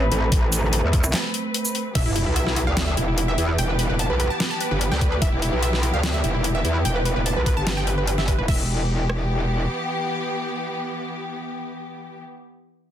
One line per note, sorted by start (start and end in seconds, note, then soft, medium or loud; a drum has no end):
0.00 1.91 A3 medium
0.00 1.91 C4 medium
0.00 1.91 B4 medium
0.12 0.30 A1 loud
0.12 closed hi-hat medium
0.32 0.61 A1 loud
0.32 kick loud
0.32 closed hi-hat medium
0.52 closed hi-hat medium
0.52 shaker medium
0.63 0.82 A1 loud
0.73 closed hi-hat medium
0.83 1.02 E2 loud
0.93 kick loud
0.93 closed hi-hat medium
1.04 1.14 C2 loud
1.04 shaker medium
1.14 snare loud
1.14 clap medium
1.14 closed hi-hat medium
1.34 closed hi-hat medium
1.54 closed hi-hat medium
1.65 shaker medium
1.75 closed hi-hat medium
1.95 2.04 E1 medium
1.95 8.44 E3 medium
1.95 8.44 B3 medium
1.95 8.44 G4 medium
1.95 2.03 E5 medium
1.95 kick loud
1.95 closed hi-hat medium
1.95 crash medium
1.95 sub drop medium
2.06 2.25 E1 medium
2.06 2.13 E4 medium
2.16 2.23 E4 medium
2.16 closed hi-hat medium
2.26 2.65 B1 loud
2.26 2.33 E4 medium
2.36 2.44 E5 medium
2.36 closed hi-hat medium
2.47 2.54 E4 medium
2.47 snare soft
2.56 2.64 E4 medium
2.56 closed hi-hat medium
2.67 2.96 D2 medium
2.67 2.74 F5 medium
2.77 2.85 E4 medium
2.77 snare loud
2.77 closed hi-hat medium
2.88 2.95 E5 medium
2.97 3.37 E1 medium
2.97 3.05 E4 medium
2.97 closed hi-hat medium
3.08 3.15 E4 medium
3.18 3.25 E4 medium
3.18 closed hi-hat medium
3.28 3.36 E5 medium
3.38 3.57 E2 medium
3.38 3.46 E4 medium
3.38 closed hi-hat medium
3.49 3.56 E4 medium
3.58 3.88 E1 loud
3.58 3.66 G5 loud
3.58 closed hi-hat medium
3.69 3.76 B4 medium
3.79 3.87 B4 medium
3.79 closed hi-hat medium
3.90 4.08 E1 medium
3.90 3.97 B4 medium
3.99 4.07 A5 medium
3.99 closed hi-hat medium
4.10 4.29 B1 loud
4.10 4.17 B4 medium
4.20 4.28 B4 medium
4.20 closed hi-hat medium
4.30 4.38 A5 medium
4.40 4.48 B4 medium
4.40 snare loud
4.40 closed hi-hat medium
4.51 4.58 A5 medium
4.61 4.68 B4 medium
4.61 closed hi-hat medium
4.71 4.90 G1 loud
4.71 4.78 B4 medium
4.81 4.89 B4 medium
4.81 closed hi-hat medium
4.92 5.20 D2 loud
4.92 4.99 G5 medium
4.92 snare soft
5.01 5.09 B4 medium
5.01 kick medium
5.01 closed hi-hat soft
5.12 5.19 B4 medium
5.22 5.31 E1 medium
5.22 5.30 E5 medium
5.22 kick loud
5.22 closed hi-hat medium
5.32 5.51 E1 loud
5.32 5.40 E4 medium
5.42 5.50 E4 medium
5.42 closed hi-hat soft
5.53 5.92 B1 loud
5.53 5.60 E4 medium
5.63 5.70 E5 medium
5.63 closed hi-hat medium
5.73 5.80 E4 medium
5.73 snare soft
5.83 5.91 E4 medium
5.83 closed hi-hat medium
5.94 6.22 D2 medium
5.94 6.01 F5 medium
6.03 6.11 E4 medium
6.03 snare loud
6.03 closed hi-hat medium
6.14 6.21 E5 medium
6.24 6.63 E1 medium
6.24 6.32 E4 medium
6.24 closed hi-hat soft
6.34 6.42 E4 medium
6.44 6.52 E4 medium
6.44 closed hi-hat medium
6.55 6.62 E5 medium
6.65 6.83 E2 medium
6.65 6.72 E4 medium
6.65 closed hi-hat soft
6.75 6.82 E4 medium
6.85 7.14 E1 medium
6.85 6.93 G5 loud
6.85 closed hi-hat medium
6.96 7.03 B4 medium
7.05 7.13 B4 medium
7.05 closed hi-hat soft
7.16 7.35 E1 loud
7.16 7.23 B4 medium
7.26 7.34 A5 medium
7.26 closed hi-hat medium
7.36 7.55 B1 loud
7.36 7.44 B4 medium
7.46 7.54 B4 medium
7.46 kick medium
7.46 closed hi-hat soft
7.57 8.37 G1 medium
7.57 7.64 A5 medium
7.67 7.74 B4 medium
7.67 snare loud
7.67 closed hi-hat medium
7.77 7.84 G5 medium
7.87 7.95 B4 medium
7.87 closed hi-hat soft
7.98 8.05 B4 medium
8.07 8.15 B4 medium
8.07 closed hi-hat medium
8.18 8.25 E5 medium
8.18 snare soft
8.28 8.36 B4 medium
8.28 kick medium
8.28 closed hi-hat soft
8.39 8.47 E1 medium
8.39 8.46 B4 medium
8.48 9.67 E1 medium
8.48 12.21 E3 medium
8.48 12.21 B3 medium
8.48 12.21 G4 medium
8.48 12.21 E5 medium
8.48 kick loud
8.48 crash medium
9.10 cross-stick medium